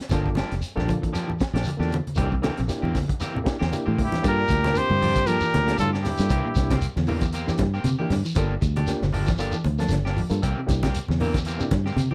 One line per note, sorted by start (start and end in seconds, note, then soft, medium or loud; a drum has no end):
0.01 snare soft
0.01 closed hi-hat soft
0.09 0.42 G1 medium
0.09 0.27 D3 medium
0.09 0.28 F3 medium
0.09 0.34 A#3 medium
0.09 0.28 A#3 medium
0.09 0.34 D4 medium
0.09 0.28 D4 medium
0.09 0.35 F4 medium
0.09 0.28 G4 medium
0.09 0.35 A4 medium
0.09 kick medium
0.09 snare soft
0.09 closed hi-hat medium
0.09 low conga medium
0.09 shekere medium
0.26 kick medium
0.35 0.53 F3 medium
0.35 0.53 G3 medium
0.35 0.53 A#3 medium
0.35 0.53 D4 medium
0.35 0.54 G4 medium
0.35 snare medium
0.35 closed hi-hat soft
0.35 high conga medium
0.35 shekere soft
0.52 0.60 F1 medium
0.52 snare soft
0.52 closed hi-hat medium
0.62 closed hi-hat medium
0.62 shekere medium
0.75 0.97 A#1 medium
0.75 1.11 A#3 medium
0.75 0.92 A#3 soft
0.75 1.12 D4 medium
0.75 0.91 D4 medium
0.75 1.12 F4 medium
0.75 0.91 G4 medium
0.75 1.12 A4 medium
0.75 snare soft
0.75 low conga medium
0.87 0.97 F3 medium
0.87 kick medium
0.87 closed hi-hat soft
0.87 high conga medium
0.87 shekere soft
1.02 1.10 E3 medium
1.02 kick medium
1.02 closed hi-hat soft
1.13 1.30 F3 medium
1.13 1.23 F3 medium
1.13 1.30 A#3 medium
1.13 1.31 D4 medium
1.13 1.31 G4 medium
1.13 snare soft
1.13 closed hi-hat medium
1.13 shekere medium
1.27 1.44 E3 medium
1.27 low conga medium
1.39 muted fingered electric bass stroke soft
1.39 kick medium
1.39 snare medium
1.39 closed hi-hat medium
1.39 shekere soft
1.53 1.63 A#1 medium
1.53 1.71 F3 medium
1.53 1.69 A#3 soft
1.53 1.69 D4 soft
1.53 1.69 G4 medium
1.53 snare medium
1.53 closed hi-hat medium
1.64 closed hi-hat medium
1.64 high conga medium
1.64 shekere medium
1.77 1.99 E2 medium
1.77 1.91 A#3 medium
1.77 1.92 D4 medium
1.77 1.95 D4 medium
1.77 1.92 F4 medium
1.77 1.94 G4 medium
1.77 1.92 A4 medium
1.77 snare soft
1.82 1.95 A#3 soft
1.90 2.08 D3 medium
1.90 closed hi-hat medium
1.90 high conga medium
1.90 shekere soft
2.07 closed hi-hat soft
2.07 high conga medium
2.15 2.49 C2 medium
2.15 2.34 E3 medium
2.15 2.27 A#3 medium
2.15 2.34 A#3 medium
2.15 2.34 C4 medium
2.15 2.27 D4 medium
2.15 2.27 E4 medium
2.15 2.28 G4 loud
2.15 2.34 G4 medium
2.15 kick medium
2.15 closed hi-hat medium
2.15 low conga medium
2.15 shekere medium
2.31 2.48 C3 medium
2.31 kick medium
2.42 2.60 E3 medium
2.42 2.53 A#3 medium
2.42 2.60 A#3 medium
2.42 2.60 C4 medium
2.42 2.53 D4 medium
2.42 2.54 E4 medium
2.42 2.60 G4 medium
2.42 2.54 A4 medium
2.42 snare medium
2.42 closed hi-hat soft
2.42 high conga medium
2.42 shekere soft
2.57 2.67 A#1 medium
2.57 2.75 C3 medium
2.57 snare soft
2.57 closed hi-hat medium
2.68 2.92 A#3 medium
2.68 2.92 D4 medium
2.68 2.93 E4 medium
2.68 2.93 G4 loud
2.68 snare soft
2.68 closed hi-hat medium
2.68 shekere medium
2.82 3.03 E2 medium
2.82 2.98 A#3 soft
2.82 2.98 C4 medium
2.82 2.97 G4 medium
2.82 low conga medium
2.95 3.04 E3 medium
2.95 kick medium
2.95 snare soft
2.95 open hi-hat medium
2.95 high conga medium
2.95 shekere soft
3.08 3.26 D3 medium
3.08 kick medium
3.08 closed hi-hat medium
3.20 3.37 E3 medium
3.20 3.38 A#3 medium
3.20 3.38 C4 medium
3.20 3.38 G4 medium
3.20 snare soft
3.20 closed hi-hat medium
3.20 shekere medium
3.33 3.52 C3 medium
3.33 3.38 E4 medium
3.33 3.39 G4 medium
3.33 low conga medium
3.44 3.56 A#3 medium
3.44 3.56 D4 medium
3.44 3.56 E4 medium
3.44 3.56 G4 loud
3.44 muted fingered electric bass stroke soft
3.44 kick medium
3.44 snare medium
3.44 closed hi-hat medium
3.44 shekere soft
3.59 3.70 E2 medium
3.59 3.77 D3 medium
3.59 3.75 A#3 soft
3.59 3.75 C4 soft
3.59 3.75 G4 medium
3.59 snare medium
3.72 3.91 A#3 medium
3.72 3.91 D4 medium
3.72 3.92 E4 medium
3.72 3.92 G4 loud
3.72 closed hi-hat medium
3.72 high conga medium
3.72 shekere medium
3.86 4.07 A2 medium
3.86 3.94 E3 medium
3.86 4.01 A#3 medium
3.86 4.01 C4 medium
3.86 4.01 G4 medium
3.97 4.07 D3 medium
3.97 kick medium
3.97 open hi-hat medium
3.97 low conga medium
3.97 shekere soft
4.04 4.26 G2 medium
4.04 4.25 E4 medium
4.04 4.26 G4 medium
4.12 4.20 E3 medium
4.12 snare soft
4.12 closed hi-hat medium
4.12 low conga medium
4.22 4.44 G2 medium
4.22 4.42 A#3 medium
4.22 4.41 A#3 medium
4.22 4.43 D4 medium
4.22 4.41 D4 medium
4.22 4.43 F4 medium
4.22 4.41 G4 medium
4.22 4.43 A4 medium
4.22 muted clean electric guitar stroke medium
4.22 kick loud
4.22 closed hi-hat medium
4.22 high conga soft
4.22 shekere medium
4.27 4.78 A#2 loud
4.27 4.77 G4 medium
4.27 4.79 A#4 loud
4.48 4.81 D2 loud
4.48 4.66 G3 medium
4.48 kick medium
4.48 closed hi-hat soft
4.48 shekere medium
4.64 4.79 A#3 soft
4.64 4.79 D4 medium
4.64 4.78 G4 medium
4.64 snare soft
4.64 closed hi-hat medium
4.64 high conga loud
4.64 shekere soft
4.73 5.28 C3 medium
4.73 4.93 A#3 medium
4.73 4.93 D4 medium
4.73 4.94 F4 medium
4.73 4.94 A#4 medium
4.73 closed hi-hat medium
4.73 shekere medium
4.77 5.30 G4 loud
4.77 5.29 C5 loud
4.90 5.38 G2 medium
4.90 high conga medium
5.01 5.11 F3 medium
5.01 5.18 F3 medium
5.01 5.18 A#3 medium
5.01 5.19 D4 medium
5.01 5.19 G4 medium
5.01 open hi-hat medium
5.01 high conga medium
5.01 low conga medium
5.01 shekere soft
5.15 muted clean electric guitar stroke medium
5.15 kick medium
5.15 closed hi-hat medium
5.15 shekere medium
5.25 5.78 A#2 medium
5.25 5.44 F3 medium
5.25 5.37 F3 medium
5.25 5.41 A#3 medium
5.25 5.44 A#3 medium
5.25 5.42 D4 medium
5.25 5.44 D4 medium
5.25 5.42 F4 medium
5.25 5.45 G4 medium
5.25 5.42 A4 medium
5.25 5.79 A#4 loud
5.25 closed hi-hat medium
5.25 shekere medium
5.30 5.80 G4 medium
5.40 5.59 E3 medium
5.40 shekere medium
5.54 5.74 D2 medium
5.54 snare soft
5.54 closed hi-hat medium
5.54 high conga loud
5.66 5.84 G3 medium
5.66 5.84 A#3 medium
5.66 5.82 A#3 soft
5.66 5.85 D4 medium
5.66 5.82 D4 medium
5.66 5.84 F4 medium
5.66 5.82 G4 medium
5.66 5.85 A4 medium
5.66 snare soft
5.66 closed hi-hat medium
5.66 shekere soft
5.78 6.10 G2 medium
5.78 5.91 A2 medium
5.78 5.92 F4 medium
5.78 5.91 A4 medium
5.78 closed hi-hat medium
5.78 high conga medium
5.78 shekere medium
5.93 6.08 A#3 soft
5.93 6.08 D4 soft
5.93 6.08 G4 medium
5.93 snare soft
6.04 6.79 G2 medium
6.04 6.22 D3 medium
6.04 6.78 E4 medium
6.04 6.78 G4 medium
6.04 snare soft
6.04 open hi-hat medium
6.04 low conga medium
6.04 shekere soft
6.18 6.28 G2 loud
6.18 6.31 A#3 medium
6.18 6.31 D4 medium
6.18 6.31 F4 medium
6.18 6.31 A4 medium
6.18 snare soft
6.18 closed hi-hat medium
6.18 shekere medium
6.29 6.41 C2 loud
6.29 6.47 E3 medium
6.29 6.47 A#3 medium
6.29 6.47 C4 medium
6.29 6.48 G4 medium
6.29 kick loud
6.29 closed hi-hat medium
6.29 high conga soft
6.29 shekere medium
6.45 6.62 A#2 medium
6.55 6.87 C2 loud
6.55 6.76 A#3 medium
6.55 6.76 D4 medium
6.55 6.76 E4 medium
6.55 6.77 G4 medium
6.55 kick medium
6.55 snare soft
6.55 closed hi-hat medium
6.55 shekere medium
6.70 6.87 C3 medium
6.70 6.85 A#3 medium
6.70 6.85 C4 medium
6.70 6.85 G4 medium
6.70 kick medium
6.70 snare soft
6.70 closed hi-hat medium
6.70 high conga loud
6.70 shekere soft
6.81 closed hi-hat medium
6.81 high conga soft
6.81 shekere medium
6.96 7.44 E2 medium
6.96 snare soft
6.96 high conga medium
7.07 7.17 E3 medium
7.07 7.25 E3 medium
7.07 7.23 A#3 medium
7.07 7.25 A#3 medium
7.07 7.25 C4 medium
7.07 7.23 D4 medium
7.07 7.23 E4 medium
7.07 7.25 G4 medium
7.07 7.24 G4 medium
7.07 open hi-hat medium
7.07 low conga medium
7.07 shekere soft
7.21 7.38 D3 medium
7.21 kick medium
7.21 closed hi-hat medium
7.21 shekere medium
7.33 7.50 A#3 medium
7.33 7.51 C4 medium
7.33 7.51 G4 medium
7.33 muted clean electric guitar stroke medium
7.33 closed hi-hat medium
7.33 high conga soft
7.33 shekere medium
7.47 7.64 E3 medium
7.47 7.65 A#3 medium
7.47 7.66 D4 medium
7.47 7.65 E4 medium
7.47 7.66 G4 loud
7.47 snare soft
7.47 shekere medium
7.58 7.79 G2 medium
7.58 kick medium
7.58 snare soft
7.58 closed hi-hat medium
7.58 high conga loud
7.74 7.89 A#3 soft
7.74 7.88 C4 medium
7.74 7.88 G4 medium
7.74 shekere soft
7.84 7.95 C3 medium
7.84 closed hi-hat medium
7.84 high conga medium
7.84 shekere medium
7.99 8.07 E3 medium
7.99 8.12 A#3 medium
7.99 8.14 A#3 medium
7.99 8.12 D4 medium
7.99 8.12 E4 medium
7.99 8.13 G4 medium
7.99 muted clean electric guitar stroke medium
8.10 8.21 G2 medium
8.10 8.20 D3 medium
8.10 snare soft
8.10 open hi-hat medium
8.10 low conga medium
8.10 shekere soft
8.25 8.32 E3 medium
8.25 shekere medium
8.35 8.56 G1 medium
8.35 8.52 D3 medium
8.35 8.53 F3 medium
8.35 8.55 A#3 medium
8.35 8.54 A#3 medium
8.35 8.56 D4 medium
8.35 8.54 D4 medium
8.35 8.56 F4 medium
8.35 8.54 G4 medium
8.35 8.56 A4 loud
8.35 kick loud
8.35 closed hi-hat medium
8.35 shekere medium
8.61 8.93 D2 loud
8.61 8.78 G3 medium
8.61 kick medium
8.61 closed hi-hat soft
8.61 shekere medium
8.76 8.91 D4 medium
8.76 8.91 G4 medium
8.76 closed hi-hat medium
8.76 high conga loud
8.76 shekere soft
8.87 9.07 A#3 medium
8.87 9.07 D4 medium
8.87 9.07 F4 medium
8.87 9.07 G4 loud
8.87 snare soft
8.87 closed hi-hat medium
8.87 shekere medium
9.02 9.50 G1 medium
9.02 snare soft
9.02 high conga medium
9.13 9.30 F3 medium
9.13 9.30 A#3 medium
9.13 9.30 D4 medium
9.13 9.31 G4 medium
9.13 open hi-hat medium
9.13 high conga medium
9.13 low conga medium
9.13 shekere soft
9.26 9.35 E3 medium
9.26 kick medium
9.26 snare soft
9.26 closed hi-hat soft
9.26 shekere medium
9.38 9.56 F3 medium
9.38 9.55 A#3 loud
9.38 9.55 D4 medium
9.38 9.57 D4 medium
9.38 9.55 F4 medium
9.38 9.57 G4 medium
9.38 9.55 A4 loud
9.38 muted clean electric guitar stroke medium
9.38 closed hi-hat medium
9.38 high conga soft
9.38 shekere medium
9.52 9.70 E3 medium
9.52 shekere medium
9.64 9.85 D2 medium
9.64 closed hi-hat medium
9.64 high conga medium
9.78 9.96 F3 medium
9.78 9.97 A#3 medium
9.78 9.94 D4 medium
9.78 9.97 D4 medium
9.78 9.97 F4 medium
9.78 9.97 A4 medium
9.78 snare soft
9.78 closed hi-hat medium
9.78 shekere soft
9.88 10.21 G1 medium
9.88 snare soft
9.88 closed hi-hat medium
9.88 high conga medium
9.88 shekere medium
10.05 10.20 A#3 medium
10.05 10.20 D4 medium
10.05 10.20 G4 medium
10.05 snare soft
10.16 10.33 F3 medium
10.16 open hi-hat medium
10.16 low conga medium
10.16 shekere soft
10.30 10.40 G2 loud
10.30 10.42 A#3 medium
10.30 10.42 D4 medium
10.30 10.43 F4 medium
10.30 10.43 A4 medium
10.30 closed hi-hat medium
10.30 shekere medium
10.42 10.54 C2 loud
10.42 10.59 E3 medium
10.42 10.59 A#3 medium
10.42 10.60 C4 medium
10.42 10.60 G4 medium
10.42 kick medium
10.42 closed hi-hat medium
10.42 shekere medium
10.57 10.74 C3 medium
10.66 10.99 C2 loud
10.66 10.86 A#3 medium
10.66 10.87 D4 medium
10.66 10.87 E4 medium
10.66 10.87 G4 medium
10.66 kick medium
10.66 snare soft
10.66 closed hi-hat medium
10.66 shekere medium
10.83 11.00 C3 medium
10.83 10.98 A#3 medium
10.83 10.98 C4 medium
10.83 10.97 G4 medium
10.83 kick medium
10.83 snare soft
10.83 closed hi-hat medium
10.83 high conga loud
10.83 shekere soft
10.94 closed hi-hat medium
10.94 high conga soft
10.94 shekere medium
11.08 11.57 E2 medium
11.08 snare soft
11.08 high conga medium
11.20 11.29 E3 medium
11.20 11.37 E3 medium
11.20 11.35 A#3 medium
11.20 11.37 A#3 medium
11.20 11.38 C4 medium
11.20 11.35 D4 medium
11.20 11.35 E4 medium
11.20 11.38 G4 medium
11.20 11.35 A#4 loud
11.20 open hi-hat medium
11.20 low conga medium
11.20 shekere soft
11.34 11.51 D3 medium
11.34 kick medium
11.34 snare soft
11.34 closed hi-hat medium
11.34 shekere medium
11.45 11.63 E3 medium
11.45 11.63 A#3 medium
11.45 11.63 C4 medium
11.45 11.63 G4 medium
11.45 closed hi-hat medium
11.45 high conga soft
11.45 shekere medium
11.59 11.76 C3 medium
11.59 11.77 A#3 medium
11.59 11.77 D4 medium
11.59 11.77 E4 medium
11.59 11.77 G4 medium
11.59 shekere medium
11.71 11.91 G2 medium
11.71 kick medium
11.71 snare soft
11.71 closed hi-hat medium
11.71 high conga loud
11.84 12.02 D3 medium
11.84 12.01 A#3 soft
11.84 12.00 C4 medium
11.84 12.00 G4 medium
11.84 snare soft
11.84 shekere soft
11.96 12.08 C3 loud
11.96 closed hi-hat medium
11.96 high conga medium
11.96 shekere medium
12.11 12.14 E3 medium
12.11 12.14 G4 medium
12.11 high conga medium